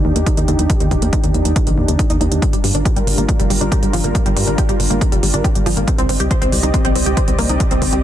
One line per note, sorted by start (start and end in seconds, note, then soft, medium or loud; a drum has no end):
0.00 5.84 D4 medium
0.00 2.39 D#4 medium
0.00 2.39 G4 medium
0.05 0.12 D#2 medium
0.05 0.09 D#3 medium
0.16 0.23 D#2 medium
0.16 0.20 A#3 medium
0.16 closed hi-hat soft
0.26 0.33 D#4 medium
0.26 kick loud
0.26 closed hi-hat medium
0.37 0.45 D#2 medium
0.37 0.48 D#3 loud
0.37 closed hi-hat medium
0.48 0.55 D#2 loud
0.48 0.55 D3 loud
0.48 closed hi-hat soft
0.59 0.66 D#2 medium
0.59 0.63 G3 medium
0.59 closed hi-hat soft
0.70 0.74 D#3 medium
0.70 kick loud
0.70 closed hi-hat medium
0.80 0.88 D#2 medium
0.80 0.87 D#3 loud
0.80 closed hi-hat soft
0.91 0.99 D#1 medium
0.91 0.95 D#3 medium
0.91 kick medium
0.91 closed hi-hat soft
1.02 1.09 D#2 medium
1.02 1.06 A#3 medium
1.02 closed hi-hat soft
1.13 1.20 D#4 medium
1.13 kick loud
1.13 closed hi-hat medium
1.24 1.31 D#2 medium
1.24 1.34 D#3 loud
1.24 closed hi-hat soft
1.34 1.42 D#2 loud
1.34 closed hi-hat soft
1.45 1.53 D#2 medium
1.45 1.49 G3 medium
1.45 closed hi-hat soft
1.56 1.60 D#3 medium
1.56 kick loud
1.56 closed hi-hat medium
1.67 1.74 A#1 medium
1.67 1.74 D#3 loud
1.67 closed hi-hat soft
1.78 1.85 D#2 medium
1.78 1.85 A#2 medium
1.88 1.96 D#2 medium
1.88 1.95 D3 medium
1.88 closed hi-hat soft
1.99 2.09 D#4 loud
1.99 kick loud
1.99 closed hi-hat medium
2.10 2.17 D#2 medium
2.10 2.20 D#4 loud
2.10 closed hi-hat medium
2.21 2.28 D#2 loud
2.21 2.28 D#4 medium
2.21 closed hi-hat soft
2.32 2.39 D#2 medium
2.32 2.42 D#3 medium
2.32 closed hi-hat soft
2.42 5.84 G3 medium
2.42 2.46 G3 medium
2.42 5.84 F4 medium
2.42 5.84 A#4 medium
2.42 kick loud
2.42 closed hi-hat medium
2.53 2.60 G1 medium
2.53 2.60 G3 loud
2.53 closed hi-hat soft
2.64 2.71 G2 medium
2.64 2.68 G3 medium
2.64 open hi-hat loud
2.75 2.82 G1 medium
2.75 2.79 D4 medium
2.75 closed hi-hat soft
2.85 2.92 G4 medium
2.85 kick loud
2.85 closed hi-hat medium
2.96 3.04 G1 medium
2.96 3.07 G3 loud
2.96 closed hi-hat soft
3.07 3.14 G1 loud
3.07 open hi-hat medium
3.18 3.25 G1 medium
3.18 3.22 A#3 medium
3.18 closed hi-hat soft
3.29 3.33 G3 medium
3.29 kick loud
3.29 closed hi-hat medium
3.39 3.47 F1 medium
3.39 3.46 G3 loud
3.39 closed hi-hat soft
3.50 3.58 G1 medium
3.50 3.54 G3 medium
3.50 open hi-hat loud
3.61 3.68 G1 medium
3.61 3.65 D4 medium
3.61 closed hi-hat soft
3.72 3.79 G4 medium
3.72 kick loud
3.72 closed hi-hat medium
3.83 3.90 G1 medium
3.83 3.87 G3 medium
3.83 closed hi-hat medium
3.93 4.01 G1 loud
3.93 4.00 F3 loud
3.93 open hi-hat medium
4.04 4.12 G1 medium
4.04 4.08 A#3 medium
4.04 closed hi-hat soft
4.15 4.19 G3 medium
4.15 kick loud
4.15 closed hi-hat medium
4.26 4.33 G1 medium
4.26 4.33 G3 loud
4.26 closed hi-hat medium
4.36 4.44 G2 loud
4.36 4.41 G3 medium
4.36 open hi-hat loud
4.47 4.55 G1 medium
4.47 4.51 D4 medium
4.47 closed hi-hat soft
4.58 4.65 G4 medium
4.58 kick loud
4.58 closed hi-hat medium
4.69 4.76 G1 medium
4.69 4.79 G3 loud
4.69 closed hi-hat soft
4.80 4.87 G1 loud
4.80 open hi-hat medium
4.90 4.98 G1 medium
4.90 4.95 A#3 medium
4.90 closed hi-hat soft
5.01 5.05 G3 medium
5.01 kick loud
5.01 closed hi-hat medium
5.12 5.20 F1 medium
5.12 5.19 G3 loud
5.12 closed hi-hat medium
5.23 5.30 G1 loud
5.23 5.27 G3 medium
5.23 open hi-hat loud
5.34 5.41 G1 loud
5.34 5.38 D4 medium
5.34 closed hi-hat medium
5.44 5.51 G4 medium
5.44 kick loud
5.44 closed hi-hat medium
5.55 5.63 G1 medium
5.55 5.59 G3 medium
5.55 closed hi-hat medium
5.66 5.73 G1 loud
5.66 5.73 F3 loud
5.66 open hi-hat medium
5.77 5.84 G1 medium
5.77 5.81 A#3 medium
5.77 closed hi-hat soft
5.88 8.03 C4 medium
5.88 5.92 C4 medium
5.88 8.03 G4 medium
5.88 8.03 D5 medium
5.88 8.03 D#5 medium
5.88 kick loud
5.88 closed hi-hat medium
5.98 6.06 C2 medium
5.98 6.05 C4 loud
5.98 closed hi-hat medium
6.09 6.17 G1 loud
6.09 6.13 C4 medium
6.09 open hi-hat loud
6.20 6.27 C2 medium
6.20 6.24 G4 medium
6.20 closed hi-hat medium
6.31 6.38 C5 medium
6.31 kick loud
6.31 closed hi-hat medium
6.42 6.49 C2 medium
6.42 6.52 C4 loud
6.42 closed hi-hat medium
6.52 6.60 C2 loud
6.52 open hi-hat medium
6.63 6.71 C2 medium
6.63 6.67 D#4 medium
6.63 closed hi-hat medium
6.74 6.78 C4 medium
6.74 kick loud
6.74 closed hi-hat medium
6.85 6.92 A#1 medium
6.85 6.92 C4 loud
6.85 closed hi-hat medium
6.96 7.03 C2 medium
6.96 7.00 C4 medium
6.96 open hi-hat loud
7.06 7.14 C2 medium
7.06 7.10 G4 medium
7.06 closed hi-hat medium
7.17 7.24 C5 medium
7.17 kick loud
7.17 closed hi-hat medium
7.28 7.35 C2 medium
7.28 7.32 C4 medium
7.28 closed hi-hat medium
7.39 7.46 C2 loud
7.39 7.46 A#3 loud
7.39 open hi-hat medium
7.49 7.57 C2 medium
7.49 7.54 D#4 medium
7.49 closed hi-hat medium
7.60 7.64 C4 medium
7.60 kick loud
7.60 closed hi-hat medium
7.71 7.78 C2 medium
7.71 7.78 C4 loud
7.71 closed hi-hat medium
7.82 7.89 G1 medium
7.82 7.86 C4 medium
7.82 kick medium
7.82 open hi-hat loud
7.93 8.00 C2 medium
7.93 7.97 G4 medium
7.93 closed hi-hat medium